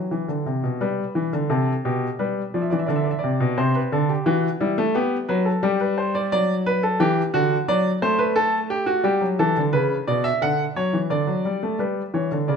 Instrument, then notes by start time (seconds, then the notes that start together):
grand piano
Already playing: F#3 G4
0.11 E3
0.28 D3
0.46 C3
0.63 B2
0.81 G3 B4
1.15 E3
1.33 D3
1.50 C3 A4
1.85 B2 G4
2.19 G3 B4
2.54 F3 D5
2.61 E5
2.70 E3 D5
2.79 E5
2.86 D3 D5
2.96 E5
3.03 D5
3.11 E5
3.19 D5
3.24 C3
3.40 B2
3.58 C3 C5
3.75 B4
3.92 D3 A4
4.09 G4
4.26 E3 F#4
4.61 G3 E4
4.78 A3
4.95 B3 G4
5.29 F#3 B4
5.45 A4
5.63 G3 G4
5.80 B4
5.98 C5
6.15 D5
6.32 F#3 D5
6.66 B4
6.83 A4
7.00 E3 G4
7.34 D3 F#4
7.68 F#3 D5
8.02 A3 C5
8.19 B4
8.36 A4
8.70 G4
8.86 F#4
9.04 G3 G4
9.21 F#3
9.39 E3 A4
9.57 D3
9.73 C#3 B4
10.07 B2 D5
10.24 E5
10.42 D3 F#5
10.76 F#3 C#5
10.93 E3
11.10 D3 D5
11.27 F#3
11.45 G3
11.63 A3
11.79 G3 B4
12.14 E3 C#5
12.32 D3
12.48 C#3 D5